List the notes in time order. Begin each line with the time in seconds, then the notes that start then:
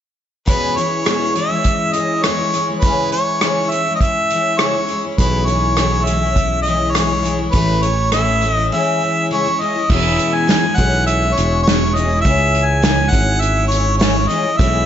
0.46 E2 B2 E3 G#3 C#4 E4 B4, kick, closed hi-hat
0.76 E3 G#3 C#4 E4 C#5, closed hi-hat
1.04 E2 B2 E3 G#3 C#4 E4, cross-stick, closed hi-hat
1.35 E3 G#3 C#4 E4 E5, closed hi-hat
1.48 E3 G#3 C#4 E4
1.64 kick, closed hi-hat
1.93 E3 G#3 D#5, closed hi-hat
1.97 C#4 E4
2.23 E2 B2 E3 G#3 C#4 C#5, cross-stick, closed hi-hat
2.27 E4
2.39 E3 G#3 C#4 E4
2.53 E3 G#3 C#4 E4, closed hi-hat
2.68 E3 G#3 C#4 E4
2.79 B4, kick, closed hi-hat
2.85 C#3 E3 G#3 C#4 E4
3.12 E3 G#3 C#4 C#5, closed hi-hat
3.17 E4
3.41 C#3 E3 G#3 C#4, cross-stick, closed hi-hat
3.45 E4
3.70 E3 G#3 C#4 E5, closed hi-hat
3.75 E4
3.87 G#3 C#4 E4
3.95 D#5
4.01 E5, kick, closed hi-hat
4.30 E3 G#3 C#4, closed hi-hat
4.36 E4
4.59 C#3 E3 G#3 C#4 E4 C#5, cross-stick, closed hi-hat
4.75 G#3 C#4 E4
4.88 E3 G#3 C#4 E4, closed hi-hat
5.04 G#3 C#4 E4
5.18 B1 B2 E3 G#3 C#4 E4 B4, kick, closed hi-hat
5.45 E3 G#3 C#5, closed hi-hat
5.50 C#4 E4
5.77 B2 E3 G#3 C#4, cross-stick, closed hi-hat
5.81 E4
6.04 E5, closed hi-hat
6.09 E3 G#3 C#4 E4
6.23 G#3 C#4 E4
6.36 kick, closed hi-hat
6.62 D#5, closed hi-hat
6.68 E3 G#3 C#4 E4
6.91 B2 C#5, cross-stick, closed hi-hat
6.96 E3 G#3 C#4 E4
7.09 G#3 C#4 E4
7.23 E3 G#3 C#4 E4, closed hi-hat
7.39 G#3 C#4 E4
7.51 A1 A2 B4, kick, closed hi-hat
7.56 E3 A3 C#4 E4
7.82 E3 A3 C#5, closed hi-hat
7.87 C#4 E4
8.12 E5, cross-stick, closed hi-hat
8.16 A2 E3 A3 C#4 E4
8.41 E3 A3, closed hi-hat
8.46 C#4 E4
8.52 D#5
8.57 A3 C#4 E4
8.72 C#3 E3 G#3 C#4 E4 E5
9.01 E3 G#3 C#4 E4
9.31 C#3 E3 G#3 C#4 E4 C#5
9.45 G#3 C#4 E4
9.59 E3 G#3 C#4 D#5
9.64 E4
9.76 G#3 C#4 E4
9.90 E1 E2 B2 E3 G#3 E4 E5, kick, crash
9.94 C#4
10.19 closed hi-hat
10.34 G#5
10.47 E2 B2 E3 G#3 C#4 E4, snare, closed hi-hat
10.63 G#3 C#4 E4
10.68 E3
10.76 B1 E3 G#3 C#4 E4 F#5, kick, closed hi-hat
11.06 E5, closed hi-hat
11.22 E3 G#3 C#4 E4
11.34 E3 C#5, closed hi-hat
11.38 E1 G#3 C#4 E4
11.63 C#5
11.67 E2 B2 E3 G#3 C#4 E4, snare, closed hi-hat
11.82 E3 G#3 C#4 E4
11.94 E3 G#3 D#5, closed hi-hat
11.99 C#4 E4
12.10 E3 G#3 C#4 E4
12.21 C#3 E3 G#3 E5, kick, closed hi-hat
12.25 C#2 C#4 E4
12.55 closed hi-hat
12.65 G#5
12.82 C#3 E3 G#3 C#4 E4, snare, closed hi-hat
12.98 G#3 C#4 E4
13.10 G#1 E3 G#3 C#4 F#5, kick, closed hi-hat
13.14 E4
13.41 E5, closed hi-hat
13.57 G#3 C#4 E4
13.68 E3 C#5, closed hi-hat
13.73 G#3 C#4 E4
13.98 C#3 E3 G#3 E4 C#5, snare, closed hi-hat
14.02 C#4
14.16 G#3 C#4 E4
14.28 E3 G#3 C#4 D#5, closed hi-hat
14.33 E4
14.43 G#3 C#4 E4
14.57 B1 B2 E3 G#3 C#4 E4 E5, kick, closed hi-hat